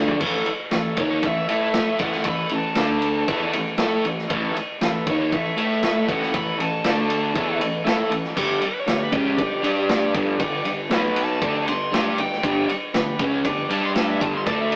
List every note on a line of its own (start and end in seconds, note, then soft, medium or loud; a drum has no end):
0.00 0.19 D2 medium
0.00 0.20 D3 medium
0.00 0.20 A3 medium
0.00 0.21 D4 loud
0.08 floor tom medium
0.20 0.45 A1 loud
0.20 0.46 A2 loud
0.20 0.46 E3 loud
0.20 0.46 A3 loud
0.20 0.53 A4 medium
0.20 0.54 C#5 medium
0.20 0.54 E5 medium
0.20 kick loud
0.20 crash loud
0.46 muted fingered electric bass stroke soft
0.46 muted overdriven electric guitar stroke medium
0.46 ride medium
0.70 0.96 A1 medium
0.70 0.93 A2 medium
0.70 0.94 E3 medium
0.70 1.03 A4 medium
0.70 1.03 C#5 medium
0.70 1.04 E5 loud
0.70 snare loud
0.70 ride loud
0.97 1.21 D#2 medium
0.97 1.23 D#3 medium
0.97 1.24 A#3 loud
0.97 1.24 D#4 loud
0.97 1.24 C#5 medium
0.97 kick loud
0.97 ride medium
1.23 1.47 A1 medium
1.23 1.44 A2 medium
1.23 1.45 E3 medium
1.23 1.55 A4 medium
1.23 1.55 C#5 medium
1.23 1.55 E5 medium
1.23 1.49 E5 medium
1.23 kick medium
1.23 ride loud
1.48 1.97 A2 medium
1.48 1.99 A3 loud
1.48 2.00 E4 loud
1.48 2.00 A4 loud
1.48 1.99 E5 medium
1.48 ride medium
1.72 2.05 A4 medium
1.72 2.06 C#5 medium
1.72 2.06 E5 medium
1.72 snare loud
1.72 ride loud
1.99 2.24 A1 medium
1.99 2.25 A2 medium
1.99 2.26 E3 medium
1.99 2.26 A3 loud
1.99 2.26 F#5 loud
1.99 kick loud
1.99 ride medium
2.12 snare soft
2.23 2.49 A1 medium
2.23 2.46 A2 medium
2.23 2.47 E3 medium
2.23 2.56 A4 medium
2.23 2.56 C#5 medium
2.23 2.57 E5 medium
2.23 kick medium
2.23 ride loud
2.28 2.52 B5 medium
2.49 2.74 A1 medium
2.49 2.72 A2 medium
2.49 2.72 E3 medium
2.49 ride medium
2.55 3.53 A5 medium
2.75 3.24 D2 medium
2.75 3.27 D3 medium
2.75 3.28 A3 medium
2.75 3.08 D4 medium
2.75 3.28 D4 loud
2.75 3.08 A4 medium
2.75 3.09 D5 medium
2.75 snare loud
2.75 ride loud
3.02 ride medium
3.28 3.52 E2 medium
3.28 3.53 E3 loud
3.28 3.53 B3 medium
3.28 3.60 E4 loud
3.28 3.54 E4 loud
3.28 3.60 A4 medium
3.28 3.60 C#5 medium
3.28 kick loud
3.28 ride loud
3.53 3.77 A1 medium
3.53 3.75 A2 medium
3.53 3.75 E3 medium
3.53 ride medium
3.77 4.03 A2 loud
3.77 4.04 A3 medium
3.77 4.10 E4 medium
3.77 4.04 E4 medium
3.77 4.11 A4 medium
3.77 4.04 A4 loud
3.77 4.10 C#5 medium
3.77 snare loud
3.77 ride loud
4.05 4.29 A1 medium
4.05 4.25 A2 medium
4.05 4.26 E3 medium
4.05 ride medium
4.18 snare soft
4.28 4.54 A1 loud
4.28 4.55 A2 loud
4.28 4.55 E3 loud
4.28 4.56 A3 loud
4.28 4.60 E4 medium
4.28 4.61 A4 medium
4.28 4.61 C#5 loud
4.28 kick loud
4.28 ride loud
4.55 muted fingered electric bass stroke soft
4.55 muted overdriven electric guitar stroke medium
4.55 ride medium
4.81 5.05 A1 medium
4.81 5.02 A2 medium
4.81 5.02 E3 medium
4.81 5.14 A4 medium
4.81 snare loud
4.81 ride medium
4.85 5.14 E4 medium
4.85 5.14 B4 medium
5.06 5.30 D#2 medium
5.06 5.32 D#3 medium
5.06 5.32 A#3 loud
5.06 5.33 D#4 loud
5.06 5.33 C#5 loud
5.06 kick loud
5.06 ride medium
5.32 5.56 A1 medium
5.32 5.53 A2 medium
5.32 5.53 E3 medium
5.32 5.64 E4 medium
5.32 5.64 A4 medium
5.32 5.65 C#5 medium
5.32 5.57 E5 medium
5.32 kick medium
5.32 ride loud
5.57 6.05 A2 medium
5.57 6.07 A3 medium
5.57 6.08 E4 loud
5.57 6.08 A4 loud
5.57 6.08 E5 medium
5.57 ride medium
5.81 6.14 E4 medium
5.81 6.15 A4 medium
5.81 6.14 C#5 medium
5.81 snare loud
5.81 ride loud
6.08 6.32 A1 loud
6.08 6.33 A2 medium
6.08 6.33 E3 medium
6.08 6.34 A3 loud
6.08 6.34 F#5 loud
6.08 kick loud
6.08 ride medium
6.22 snare soft
6.33 6.58 A1 medium
6.33 6.54 A2 medium
6.33 6.55 E3 medium
6.33 6.65 E4 medium
6.33 6.65 A4 medium
6.33 6.66 C#5 medium
6.33 6.59 B5 loud
6.33 kick loud
6.33 ride loud
6.59 6.83 A1 medium
6.59 6.80 A2 medium
6.59 6.80 E3 medium
6.59 7.59 A5 loud
6.59 ride medium
6.84 7.32 D2 loud
6.84 7.34 D3 medium
6.84 7.35 A3 loud
6.84 7.17 D4 medium
6.84 7.36 D4 loud
6.84 7.16 A4 medium
6.84 7.16 D5 medium
6.84 snare loud
6.84 ride loud
7.10 ride medium
7.34 7.59 E2 loud
7.34 7.60 E3 medium
7.34 7.60 B3 loud
7.34 7.67 E4 medium
7.34 7.61 E4 loud
7.34 7.67 A4 medium
7.34 7.67 C#5 loud
7.34 kick loud
7.34 ride loud
7.61 7.84 A1 medium
7.61 7.81 A2 medium
7.61 7.81 E3 medium
7.61 ride medium
7.84 8.09 A2 loud
7.84 8.10 A3 medium
7.84 8.16 E4 medium
7.84 8.11 E4 medium
7.84 8.16 A4 medium
7.84 8.11 A4 medium
7.84 8.17 E5 medium
7.84 snare loud
7.84 ride loud
8.10 8.34 A1 medium
8.10 8.32 A2 medium
8.10 8.32 E3 medium
8.10 ride medium
8.24 snare soft
8.35 8.60 G1 loud
8.35 8.61 G2 loud
8.35 8.62 D3 loud
8.35 8.62 G3 loud
8.35 8.68 D4 medium
8.35 8.69 G4 medium
8.35 8.68 D5 medium
8.35 kick loud
8.35 crash loud
8.61 muted overdriven electric guitar stroke medium
8.61 muted fingered electric bass stroke soft
8.61 ride medium
8.67 8.77 B4 medium
8.79 9.02 C#5 medium
8.86 9.11 G1 medium
8.86 9.07 G2 medium
8.86 9.08 D3 medium
8.86 9.18 D4 medium
8.86 9.19 G4 medium
8.86 9.19 D5 medium
8.86 snare loud
8.86 ride medium
9.03 9.14 B4 medium
9.12 9.37 C#2 medium
9.12 9.37 C#3 loud
9.12 9.38 G#3 loud
9.12 9.38 C#4 loud
9.12 kick loud
9.12 ride medium
9.17 10.14 G4 loud
9.36 9.62 G1 medium
9.36 9.59 G2 medium
9.36 9.59 D3 medium
9.36 9.69 D4 medium
9.36 9.69 G4 medium
9.36 9.69 D5 medium
9.36 kick medium
9.36 ride loud
9.62 10.11 G2 medium
9.62 10.13 G3 loud
9.62 10.14 D4 loud
9.62 10.14 G4 loud
9.62 ride medium
9.89 10.20 D4 medium
9.89 10.21 G4 medium
9.89 10.21 D5 medium
9.89 snare loud
9.89 ride loud
10.14 10.38 G1 medium
10.14 10.39 G2 medium
10.14 10.39 D3 medium
10.14 10.40 G3 loud
10.14 kick loud
10.14 ride medium
10.39 10.63 G1 medium
10.39 10.61 G2 medium
10.39 10.61 D3 medium
10.39 10.72 D4 medium
10.39 10.72 G4 medium
10.39 10.73 D5 loud
10.39 kick loud
10.39 ride loud
10.65 10.89 G1 medium
10.65 10.86 G2 medium
10.65 10.86 D3 medium
10.65 ride medium
10.90 11.38 B1 medium
10.90 11.40 B2 medium
10.90 11.41 F#3 loud
10.90 11.41 B3 loud
10.90 11.23 B3 medium
10.90 11.23 F#4 medium
10.90 snare loud
10.90 ride loud
10.94 11.24 B4 loud
11.16 11.67 A5 loud
11.16 ride medium
11.42 11.66 D2 medium
11.42 11.67 D3 medium
11.42 11.67 A3 loud
11.42 11.73 D4 medium
11.42 11.67 D4 loud
11.42 11.74 G4 medium
11.42 11.73 D5 medium
11.42 kick loud
11.42 ride loud
11.67 11.91 G1 medium
11.67 11.88 G2 medium
11.67 11.88 D3 medium
11.67 12.18 C6 medium
11.67 ride medium
11.92 12.16 G2 loud
11.92 12.17 G3 medium
11.92 12.17 D4 medium
11.92 12.25 D4 medium
11.92 12.18 G4 loud
11.92 snare loud
11.92 ride loud
11.96 12.26 G4 medium
11.96 12.26 D5 medium
12.18 12.41 G1 medium
12.18 12.39 G2 medium
12.18 12.39 D3 medium
12.18 12.68 G5 loud
12.18 ride medium
12.32 snare soft
12.43 12.67 G1 loud
12.43 12.68 G2 loud
12.43 12.68 D3 loud
12.43 12.69 G3 loud
12.43 12.75 D4 medium
12.43 12.76 G4 medium
12.43 12.76 D5 medium
12.43 kick loud
12.43 ride loud
12.69 muted fingered electric bass stroke soft
12.69 muted overdriven electric guitar stroke medium
12.69 ride medium
12.94 13.18 G1 medium
12.94 13.14 G2 medium
12.94 13.15 D3 medium
12.94 13.26 D4 medium
12.94 13.25 G4 medium
12.94 13.27 B4 loud
12.94 snare loud
12.94 ride medium
13.19 13.43 C#2 loud
13.19 13.44 C#3 loud
13.19 13.44 G#3 loud
13.19 13.44 C#4 loud
13.19 kick loud
13.19 ride medium
13.44 13.68 G1 medium
13.44 13.65 G2 medium
13.44 13.65 D3 medium
13.44 13.76 D4 medium
13.44 13.76 G4 medium
13.44 13.77 D5 loud
13.44 kick medium
13.44 ride loud
13.70 14.17 G2 medium
13.70 14.20 G3 medium
13.70 14.20 D4 loud
13.70 14.20 G4 loud
13.70 13.84 A5 loud
13.70 ride medium
13.86 13.96 C6 medium
13.95 14.27 D4 medium
13.95 14.28 G4 medium
13.95 14.27 E5 medium
13.95 14.08 A5 loud
13.95 snare loud
13.95 ride medium
14.10 14.22 E5 loud
14.20 14.44 G1 loud
14.20 14.46 G2 medium
14.20 14.45 D3 medium
14.20 14.46 G3 loud
14.20 14.33 A5 medium
14.20 kick loud
14.20 ride medium
14.37 14.46 C6 loud
14.44 14.76 D2 loud
14.44 14.76 D3 loud
14.44 14.76 A3 loud
14.44 14.76 D4 medium
14.44 14.76 D4 loud
14.44 14.76 A4 medium
14.44 14.76 D5 medium
14.44 14.59 A5 loud
14.44 kick loud
14.44 ride loud
14.61 14.72 E5 medium
14.72 ride medium